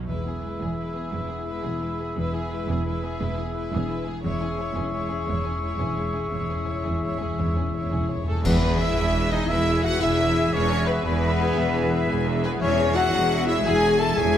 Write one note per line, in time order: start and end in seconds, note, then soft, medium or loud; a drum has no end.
0.00 1.12 B3 soft
0.07 0.52 E1 soft
0.07 0.52 E2 soft
0.07 0.57 E2 soft
0.07 2.15 E3 soft
0.07 4.20 G#3 soft
0.07 0.25 G#3 soft
0.07 4.20 B3 soft
0.07 0.25 E4 soft
0.07 4.20 G#4 soft
0.07 0.25 B4 soft
0.07 4.20 E5 soft
0.07 3.94 B5 soft
0.25 0.43 B3 soft
0.25 1.28 E4 soft
0.25 0.43 G#4 soft
0.42 0.61 G#3 soft
0.42 0.60 E4 soft
0.42 1.46 B4 soft
0.42 0.61 B4 soft
0.59 1.04 E1 soft
0.59 1.05 E2 soft
0.59 0.78 B3 soft
0.59 0.77 G#4 soft
0.59 0.78 G#4 soft
0.59 0.94 E5 soft
0.78 0.94 G#3 soft
0.78 0.94 E4 soft
0.78 0.94 B4 soft
0.78 1.80 G#5 soft
0.95 1.13 B3 soft
0.95 1.12 G#4 soft
0.95 1.13 G#4 soft
0.95 1.62 E5 soft
1.12 1.56 E1 soft
1.12 1.56 E2 soft
1.12 1.30 G#3 soft
1.12 3.19 B3 soft
1.12 1.30 E4 soft
1.12 1.30 B4 soft
1.29 1.48 B3 soft
1.29 2.33 E4 soft
1.29 1.47 G#4 soft
1.46 1.63 G#3 soft
1.46 1.63 E4 soft
1.46 1.63 B4 soft
1.46 2.50 B4 soft
1.63 2.08 E1 medium
1.63 2.09 E2 soft
1.63 1.82 B3 soft
1.63 1.82 G#4 soft
1.63 1.98 E5 soft
1.81 2.00 G#3 soft
1.81 2.00 E4 soft
1.81 1.99 B4 soft
1.81 2.85 G#5 soft
1.99 2.17 B3 soft
1.99 2.17 G#4 soft
1.99 2.18 G#4 soft
1.99 2.67 E5 soft
2.16 2.61 E1 medium
2.16 2.60 E2 medium
2.16 4.22 E3 soft
2.16 2.33 G#3 soft
2.16 2.34 E4 soft
2.16 2.33 B4 soft
2.34 2.52 B3 soft
2.34 3.36 E4 soft
2.34 2.52 G#4 soft
2.51 2.69 G#3 soft
2.51 2.70 E4 soft
2.51 2.69 B4 soft
2.51 3.54 B4 soft
2.69 3.12 E1 medium
2.69 3.12 E2 medium
2.69 2.87 B3 soft
2.69 2.86 G#4 soft
2.69 2.87 G#4 soft
2.69 3.02 E5 soft
2.86 3.02 G#3 soft
2.86 3.03 E4 soft
2.86 3.02 B4 soft
2.86 3.87 G#5 soft
3.03 3.21 B3 soft
3.03 3.21 G#4 soft
3.03 3.71 E5 soft
3.21 3.64 E1 medium
3.21 3.64 E2 medium
3.21 3.38 G#3 soft
3.21 4.25 B3 soft
3.21 3.39 E4 medium
3.21 3.38 B4 medium
3.38 3.56 B3 soft
3.38 4.40 E4 soft
3.38 3.55 G#4 soft
3.38 3.56 G#4 soft
3.55 3.71 G#3 soft
3.55 3.72 E4 soft
3.55 4.25 B4 soft
3.55 3.71 B4 soft
3.72 4.16 E1 medium
3.72 4.16 E2 medium
3.72 3.90 B3 soft
3.72 3.90 G#4 soft
3.72 4.05 E5 soft
3.88 4.07 G#3 soft
3.88 4.07 E4 soft
3.88 4.07 B4 soft
3.88 4.92 G#5 soft
4.06 4.24 B3 soft
4.06 4.24 G#4 soft
4.06 4.25 G#4 soft
4.06 4.75 E5 soft
4.23 4.68 E1 medium
4.23 4.68 E2 medium
4.23 4.31 E2 soft
4.23 5.27 E3 soft
4.23 8.09 G#3 soft
4.23 4.41 G#3 medium
4.23 8.09 C#4 soft
4.23 4.41 E4 soft
4.23 8.23 G#4 soft
4.23 4.40 C#5 soft
4.23 8.10 E5 medium
4.23 8.23 C#6 medium
4.32 4.38 E2 soft
4.39 4.45 E2 soft
4.39 4.59 C#4 soft
4.39 5.44 E4 soft
4.39 4.59 G#4 soft
4.54 4.60 E2 soft
4.54 5.61 C#5 soft
4.54 4.76 C#5 soft
4.59 4.68 E2 soft
4.59 4.76 G#3 soft
4.59 4.76 E4 soft
4.69 4.75 E2 soft
4.76 5.20 E1 medium
4.76 4.82 E2 soft
4.76 5.20 E2 medium
4.76 4.93 C#4 soft
4.76 4.94 C#4 soft
4.76 4.93 G#4 soft
4.76 5.10 E5 soft
4.83 4.90 E2 soft
4.91 4.98 E2 soft
4.91 5.09 G#3 soft
4.91 5.09 E4 soft
4.91 5.09 C#5 soft
4.91 5.97 G#5 medium
4.99 5.05 E2 soft
5.06 5.12 E2 soft
5.06 5.28 C#4 soft
5.10 5.20 E2 soft
5.10 5.28 C#4 soft
5.10 5.28 G#4 soft
5.10 5.79 E5 medium
5.21 5.28 E2 soft
5.27 5.71 E1 medium
5.27 5.72 E2 medium
5.27 5.35 E2 soft
5.27 6.31 E3 soft
5.27 5.45 G#3 soft
5.27 5.45 E4 soft
5.27 5.45 C#5 soft
5.36 5.42 E2 soft
5.43 5.50 E2 soft
5.43 5.62 C#4 soft
5.43 5.63 C#4 soft
5.43 6.49 E4 soft
5.43 5.63 G#4 soft
5.51 5.57 E2 soft
5.58 5.64 E2 soft
5.62 5.72 E2 soft
5.62 5.79 G#3 soft
5.62 5.79 E4 soft
5.62 5.79 C#5 soft
5.62 6.66 C#5 soft
5.73 5.80 E2 soft
5.80 6.24 E1 medium
5.80 6.24 E2 medium
5.80 5.88 E2 soft
5.80 5.97 C#4 soft
5.80 5.98 C#4 soft
5.80 5.97 G#4 soft
5.80 6.14 E5 soft
5.89 5.95 E2 soft
5.96 6.02 E2 soft
5.96 6.15 G#3 soft
5.96 6.15 E4 soft
5.96 6.15 C#5 soft
5.96 7.02 G#5 soft
6.03 6.10 E2 soft
6.11 6.17 E2 soft
6.11 6.32 C#4 soft
6.11 6.33 C#4 soft
6.11 6.32 G#4 soft
6.11 6.85 E5 soft
6.18 6.25 E2 soft
6.26 6.33 E2 soft
6.32 6.77 E1 soft
6.32 6.77 E2 soft
6.32 6.40 E2 soft
6.32 7.37 E3 soft
6.32 6.49 G#3 soft
6.32 6.49 E4 soft
6.32 6.49 C#5 soft
6.41 6.47 E2 soft
6.48 6.55 E2 soft
6.48 6.68 C#4 soft
6.48 7.56 E4 soft
6.48 6.68 G#4 soft
6.56 6.63 E2 soft
6.64 6.71 E2 soft
6.64 6.85 E4 soft
6.64 7.72 C#5 soft
6.68 6.79 E2 soft
6.68 6.86 G#3 soft
6.68 6.86 C#5 soft
6.80 6.86 E2 soft
6.85 7.30 E1 soft
6.85 7.30 E2 soft
6.85 6.93 E2 soft
6.85 7.03 C#4 soft
6.85 7.03 G#4 soft
6.85 7.20 E5 soft
6.95 7.01 E2 medium
7.02 7.09 E2 medium
7.02 7.19 G#3 soft
7.02 7.19 E4 soft
7.02 7.20 C#5 soft
7.02 8.08 G#5 soft
7.11 7.16 E2 medium
7.17 7.23 E2 medium
7.17 7.38 C#4 soft
7.17 7.39 G#4 soft
7.22 7.31 E2 soft
7.22 7.91 E5 soft
7.33 7.39 E2 medium
7.37 7.83 E1 soft
7.37 7.83 E2 soft
7.37 7.46 E2 medium
7.37 8.43 E3 soft
7.37 7.55 G#3 soft
7.37 7.56 E4 soft
7.37 7.56 C#5 soft
7.48 7.54 E2 medium
7.55 7.62 E2 medium
7.55 7.73 C#4 soft
7.55 7.74 C#4 soft
7.55 8.51 E4 soft
7.55 7.74 G#4 soft
7.63 7.69 E2 medium
7.70 7.76 E2 medium
7.70 7.90 G#3 soft
7.70 8.46 C#5 soft
7.74 7.84 E2 medium
7.74 7.90 E4 soft
7.74 7.91 C#5 soft
7.86 7.91 E2 medium
7.90 8.36 E1 soft
7.90 8.36 E2 soft
7.90 7.99 E2 medium
7.90 8.09 C#4 soft
7.90 8.09 G#4 soft
7.90 8.25 E5 soft
8.00 8.08 E2 medium
8.08 8.16 E2 medium
8.08 8.26 G#3 soft
8.08 8.28 E4 soft
8.08 8.27 C#5 soft
8.08 8.87 G#5 soft
8.17 8.23 E2 medium
8.24 8.30 E2 medium
8.24 8.35 A3 medium
8.24 8.47 A3 medium
8.24 8.45 C#4 soft
8.24 8.45 G#4 medium
8.24 8.47 A4 medium
8.24 8.44 A4 medium
8.24 8.35 A4 soft
8.24 8.78 E5 soft
8.28 8.39 E2 medium
8.28 8.45 C#4 soft
8.44 8.91 E1 medium
8.44 8.91 E2 loud
8.44 8.93 E2 loud
8.44 10.52 E3 medium
8.44 8.79 B3 loud
8.44 8.80 B3 medium
8.44 9.45 G#4 medium
8.44 8.61 B4 medium
8.44 8.79 B4 loud
8.44 8.80 B4 medium
8.44 8.61 E5 medium
8.44 9.46 E5 medium
8.44 concert bass drum medium
8.44 crash medium
8.53 9.31 E4 medium
8.61 9.22 G#4 medium
8.61 8.79 G#4 medium
8.61 8.79 G#5 medium
8.71 9.75 B4 medium
8.79 9.31 E4 loud
8.79 9.31 E4 medium
8.79 8.97 B4 medium
8.79 9.30 E5 medium
8.79 9.13 E5 medium
8.79 8.97 E5 medium
8.79 9.31 E5 medium
8.79 9.32 E5 loud
8.88 9.04 G#5 medium
8.97 9.43 E1 medium
8.97 9.43 E2 medium
8.97 9.15 G#4 medium
8.97 9.15 G#5 medium
8.97 10.00 B5 medium
9.05 9.92 G#5 medium
9.15 9.31 B4 medium
9.15 9.31 E5 medium
9.31 9.49 D#4 loud
9.31 9.48 D#4 loud
9.31 9.48 E4 medium
9.31 9.50 G#4 medium
9.31 9.49 D#5 medium
9.31 9.40 D#5 medium
9.31 9.49 D#5 loud
9.31 9.49 G#5 medium
9.41 9.57 B3 medium
9.48 9.95 E1 medium
9.48 9.95 E2 medium
9.48 9.83 E4 loud
9.48 10.34 E4 medium
9.48 10.01 G#4 medium
9.48 9.67 B4 medium
9.48 10.00 E5 medium
9.48 9.86 E5 loud
9.48 9.83 E5 medium
9.48 9.84 E5 loud
9.48 9.67 E5 medium
9.58 10.43 B3 medium
9.67 10.26 G#4 medium
9.67 9.85 G#4 medium
9.67 9.85 G#5 medium
9.76 10.77 B4 medium
9.83 10.01 F#4 loud
9.83 9.92 F#4 medium
9.83 10.01 B4 medium
9.83 10.18 E5 medium
9.83 10.01 E5 medium
9.83 10.01 F#5 loud
9.83 10.01 F#5 medium
9.83 9.92 F#5 medium
9.93 10.09 G#5 medium
10.00 10.47 E1 medium
10.00 10.47 E2 medium
10.00 10.52 E4 loud
10.00 10.53 E4 medium
10.00 10.19 G#4 medium
10.00 11.04 G#4 medium
10.00 10.53 E5 medium
10.00 11.03 E5 medium
10.00 10.55 E5 loud
10.00 10.53 E5 loud
10.00 10.19 G#5 medium
10.00 11.03 B5 medium
10.10 10.94 G#5 medium
10.19 10.36 B4 medium
10.19 10.86 E5 medium
10.19 10.36 E5 medium
10.27 10.69 G#4 medium
10.36 10.60 E4 medium
10.36 10.54 G#4 medium
10.36 10.54 G#5 medium
10.44 11.47 B3 medium
10.53 10.99 E1 medium
10.53 10.99 E2 medium
10.53 12.60 E3 medium
10.53 10.87 C#4 medium
10.53 10.87 C#4 loud
10.53 10.70 B4 medium
10.53 10.87 C#5 loud
10.53 10.89 C#5 loud
10.53 10.88 C#5 medium
10.53 10.70 E5 medium
10.61 11.38 E4 medium
10.72 10.89 G#4 medium
10.72 10.88 G#5 medium
10.78 11.81 B4 medium
10.87 11.04 B3 medium
10.87 10.96 B3 medium
10.87 11.03 B4 medium
10.87 11.05 B4 medium
10.87 11.06 B4 medium
10.87 11.04 B4 medium
10.87 11.20 E5 medium
10.87 11.06 E5 medium
10.95 11.11 G#5 medium
11.04 11.51 E1 medium
11.04 11.51 E2 loud
11.04 12.24 B3 loud
11.04 12.58 G#4 medium
11.04 11.23 G#4 medium
11.04 12.24 B4 medium
11.04 12.24 B4 loud
11.04 12.32 E5 loud
11.04 11.23 G#5 medium
11.04 12.09 B5 medium
11.13 11.99 G#5 medium
11.21 11.39 B4 medium
11.21 11.91 E5 medium
11.21 11.39 E5 medium
11.30 11.72 G#4 medium
11.39 11.55 E4 medium
11.39 11.58 G#4 medium
11.39 11.58 G#5 medium
11.48 11.64 B3 medium
11.57 12.03 E1 medium
11.57 12.03 E2 medium
11.57 12.42 E4 medium
11.57 11.75 B4 medium
11.57 11.75 E5 medium
11.65 12.52 B3 medium
11.74 12.34 G#4 medium
11.74 11.92 G#4 medium
11.74 11.92 G#5 medium
11.83 12.62 B4 medium
11.92 12.08 B4 medium
11.92 12.25 E5 medium
11.92 12.08 E5 medium
12.01 12.17 G#5 medium
12.09 12.55 E1 loud
12.09 12.55 E2 medium
12.09 12.27 G#4 medium
12.09 12.27 G#5 medium
12.09 12.63 B5 medium
12.18 13.04 G#5 medium
12.26 12.44 B4 medium
12.26 12.95 E5 medium
12.26 12.44 E5 medium
12.35 12.77 G#4 medium
12.43 12.59 B3 medium
12.43 12.60 B3 medium
12.43 12.69 E4 medium
12.43 12.61 G#4 medium
12.43 12.51 B4 medium
12.43 12.52 B4 medium
12.43 12.51 B4 medium
12.43 12.61 G#5 medium
12.53 12.63 B3 medium
12.60 13.07 E1 medium
12.60 13.07 E2 loud
12.60 13.64 E3 medium
12.60 12.95 C#4 loud
12.60 12.78 E4 medium
12.60 13.64 G#4 medium
12.60 12.95 C#5 medium
12.60 12.95 C#5 loud
12.60 12.97 C#5 loud
12.60 13.63 E5 medium
12.60 12.78 E5 medium
12.70 12.87 E4 medium
12.78 13.39 G#4 medium
12.78 12.96 G#4 medium
12.78 12.96 C#5 medium
12.88 13.47 E4 medium
12.95 13.13 E4 medium
12.95 13.47 F#4 loud
12.95 13.48 F#4 loud
12.95 13.13 E5 medium
12.95 13.48 F#5 medium
12.95 13.48 F#5 loud
12.95 13.47 F#5 loud
13.05 13.22 G#5 medium
13.13 13.59 E1 loud
13.13 13.59 E2 loud
13.13 13.31 G#4 medium
13.13 13.31 C#5 medium
13.13 13.29 E5 medium
13.23 14.08 G#5 medium
13.31 13.47 E4 medium
13.31 13.99 E5 medium
13.31 13.47 E5 medium
13.40 13.81 G#4 medium
13.47 13.65 E4 loud
13.47 13.64 E4 medium
13.47 13.72 E4 medium
13.47 13.66 G#4 medium
13.47 13.66 C#5 medium
13.47 13.56 E5 medium
13.47 13.65 E5 medium
13.57 14.38 G#3 medium
13.64 14.11 E1 loud
13.64 14.12 E2 medium
13.64 14.38 E3 medium
13.64 13.83 E4 medium
13.64 13.99 G#4 loud
13.64 14.01 G#4 loud
13.64 14.16 G#4 medium
13.64 13.83 E5 medium
13.64 14.16 E5 medium
13.64 14.01 G#5 loud
13.64 13.99 G#5 loud
13.64 14.00 G#5 loud
13.74 13.90 E4 medium
13.83 14.00 G#4 medium
13.83 14.00 C#5 medium
13.91 14.38 E4 medium
13.98 14.16 E4 medium
13.98 14.07 A4 loud
13.98 14.19 A4 loud
13.98 14.16 E5 medium
13.98 14.15 E5 medium
13.98 14.18 A5 loud
13.98 14.17 A5 loud
13.98 14.18 A5 loud
14.09 14.24 G#5 medium
14.16 14.38 E1 loud
14.16 14.38 E2 medium
14.16 14.38 G#4 medium
14.16 14.38 G#4 loud
14.16 14.35 G#4 medium
14.16 14.38 G#4 loud
14.16 14.35 C#5 medium
14.16 14.33 E5 medium
14.16 14.38 E5 loud
14.16 14.38 G#5 loud